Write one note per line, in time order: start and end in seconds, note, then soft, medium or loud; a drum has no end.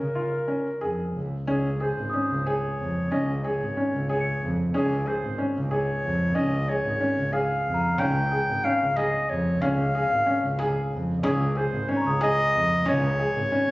0.00 0.25 C#3 medium
0.00 1.16 A#4 medium
0.15 0.34 F4 medium
0.48 0.66 C#4 medium
0.81 1.08 F2 medium
0.81 1.18 G#4 medium
1.15 1.28 C#2 medium
1.47 1.87 C#2 medium
1.47 1.66 C#4 medium
1.47 1.83 G#4 medium
1.80 1.99 G#4 medium
1.80 2.48 C5 medium
1.97 2.10 G#1 medium
2.10 2.32 C#4 medium
2.10 3.52 D#6 medium
2.30 2.56 C#2 medium
2.46 2.83 G#4 medium
2.46 3.13 C#5 medium
2.79 3.05 F2 medium
3.11 3.51 C#2 loud
3.11 3.30 C#4 medium
3.11 3.38 D#5 loud
3.38 3.45 D#5 medium
3.43 3.63 G#4 medium
3.43 4.09 C#5 medium
3.61 3.74 G#1 medium
3.77 3.95 C#4 medium
3.94 4.19 C#2 medium
4.09 4.46 G#4 medium
4.09 4.55 C#5 medium
4.20 5.60 C#7 medium
4.42 4.68 F2 medium
4.74 5.13 C#2 loud
4.74 4.92 C#4 medium
4.74 5.09 G#4 loud
4.74 6.18 G#5 medium
5.06 5.24 G#4 medium
5.06 5.45 C5 medium
5.23 5.36 G#1 medium
5.38 5.56 C#4 medium
5.56 5.81 C#2 medium
5.71 6.07 G#4 medium
5.71 6.37 C#5 medium
6.04 6.30 F2 medium
6.35 6.75 C#2 loud
6.35 6.53 C#4 medium
6.35 6.71 D#5 loud
6.68 6.86 G#4 medium
6.68 7.34 C#5 loud
6.84 6.97 G#1 medium
7.00 7.19 C#4 medium
7.17 7.43 C#2 medium
7.33 7.70 G#4 medium
7.33 8.00 F5 medium
7.66 7.92 F2 medium
7.74 9.16 A#5 medium
7.98 8.38 C#2 loud
7.98 8.17 C#4 medium
7.98 8.66 G5 loud
7.98 frame drum medium
8.31 8.50 G#4 medium
8.48 8.61 G#1 medium
8.64 8.83 C#4 medium
8.64 8.98 F5 loud
8.81 9.07 C#2 medium
8.96 9.34 G#4 medium
8.96 9.31 D#5 medium
8.96 frame drum soft
9.29 9.55 F2 medium
9.29 9.63 C#5 medium
9.61 10.00 C#2 loud
9.61 9.80 C#4 medium
9.61 10.91 F5 loud
9.61 frame drum medium
9.95 10.13 G#4 medium
9.95 11.36 F5 medium
10.10 10.23 G#1 medium
10.26 10.45 C#4 medium
10.43 10.69 C#2 loud
10.59 10.95 G#4 medium
10.59 frame drum medium
10.92 11.17 F2 medium
11.23 11.62 C#2 loud
11.23 11.42 C#4 loud
11.23 11.59 G#4 loud
11.23 frame drum medium
11.55 11.74 G#4 medium
11.55 11.90 C5 medium
11.72 11.85 G#1 medium
11.88 12.07 C#4 medium
11.88 12.21 C#5 loud
11.96 13.38 A#5 medium
12.02 12.31 C#2 loud
12.02 13.41 C#6 medium
12.07 13.43 D#6 medium
12.21 12.57 G#4 loud
12.21 12.90 D#5 loud
12.21 frame drum medium
12.54 12.80 F2 loud
12.86 13.25 C#2 loud
12.86 13.04 C#4 loud
12.86 13.71 C#5 loud
12.86 frame drum medium
13.19 13.38 G#4 medium
13.19 frame drum soft
13.36 13.49 G#1 medium
13.52 13.70 C#4 medium
13.52 frame drum soft